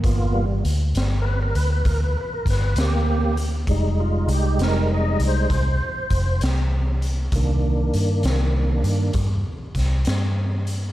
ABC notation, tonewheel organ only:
X:1
M:12/8
L:1/16
Q:3/8=66
K:Cm
V:1 name="Tonewheel organ"
z2 G,2 z4 [^A=B] A B B A B [AB] A B2 [^A,G]4 z2 | E2 F2 G2 B2 e2 [Ec]8 z6 | z24 |]
V:2 name="Tonewheel organ"
[^A,=B,F]2 z16 z6 | [G,A,]8- [G,A,]2 [G,A,]2 z12 | [E,B,D]8- [E,B,D]2 [E,B,D]2 z12 |]